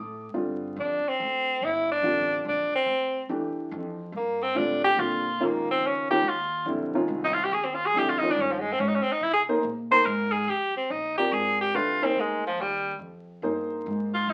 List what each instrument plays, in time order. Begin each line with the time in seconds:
Already playing: upright bass A2, grand piano D6
0.34 upright bass G2, grand piano D3 G3 C4 F4
0.76 upright bass F2, tenor saxophone D4
1.05 tenor saxophone C4, muted upright bass stroke
1.20 upright bass D2
1.61 upright bass G1, tenor saxophone E4
1.91 tenor saxophone D4
2.02 upright bass A1, grand piano D3 G3 C4 F4
2.45 upright bass A#1, tenor saxophone D4
2.72 tenor saxophone C4, muted upright bass stroke
2.86 upright bass D2
3.29 upright bass E2, grand piano E3 A3 D4 G4
3.71 upright bass F2
4.12 upright bass G2
4.17 tenor saxophone A#3
4.42 tenor saxophone C4
4.55 upright bass A2, grand piano D3 G3 C4 F4, tenor saxophone D4
4.84 tenor saxophone G4
4.97 upright bass A#2, grand piano D3 G3 C4 F4, tenor saxophone F4
5.40 upright bass A#1, grand piano D#3 G#3 C#4 F4
5.44 tenor saxophone A#3
5.71 tenor saxophone C4
5.81 upright bass C#2
5.86 tenor saxophone C#4
6.10 grand piano D#3 G#3 C#4 F4, tenor saxophone G4
6.23 upright bass D#2
6.29 tenor saxophone F4
6.65 upright bass A#1, grand piano D3 G3 C4 E4
6.94 grand piano D#3 G#3 C#4 F4
7.08 upright bass C2
7.25 tenor saxophone D#4
7.33 tenor saxophone F4
7.44 tenor saxophone G4
7.51 upright bass D#2, tenor saxophone G#4
7.64 tenor saxophone C4
7.74 tenor saxophone F4
7.86 tenor saxophone G#4
7.94 upright bass F2, grand piano D3 G3 C4 E4
7.98 tenor saxophone G4
8.09 tenor saxophone F4
8.19 grand piano D#3 G#3, tenor saxophone D#4
8.23 grand piano C#4 F4
8.31 tenor saxophone D4
8.36 upright bass G2
8.41 tenor saxophone C#4
8.51 tenor saxophone F3
8.60 tenor saxophone G#3
8.72 tenor saxophone C4
8.78 upright bass G#2, tenor saxophone C#4
8.88 tenor saxophone D#4
8.95 tenor saxophone C#4
9.02 tenor saxophone C4, muted upright bass stroke
9.12 tenor saxophone D#4
9.20 upright bass C3, tenor saxophone E4
9.33 tenor saxophone G#4
9.49 grand piano A#3 D#4 G#4 C5
9.63 upright bass A#2
9.91 grand piano A#3 D#4 G#4 A#4, tenor saxophone C5
10.05 upright bass G#2, tenor saxophone A#4
10.32 tenor saxophone G#4
10.47 upright bass F2, tenor saxophone G4
10.75 tenor saxophone C4, muted upright bass stroke
10.90 upright bass A#1, tenor saxophone D#4
11.18 grand piano C4 F4 A#4 D5, tenor saxophone G4
11.32 upright bass G#1, tenor saxophone G#4
11.61 tenor saxophone G4
11.73 upright bass C2, grand piano A3 D4 G4 B4, tenor saxophone F4
12.02 grand piano A#3 D#4 G#4 C5, tenor saxophone C4
12.16 upright bass D2
12.20 tenor saxophone G#3
12.47 tenor saxophone F3
12.57 upright bass D#2, tenor saxophone G3
12.99 upright bass F2
13.42 upright bass G2, grand piano A#3 D#4 G#4 C5
13.86 upright bass G#2
14.14 tenor saxophone F4
14.27 upright bass F2, tenor saxophone D#4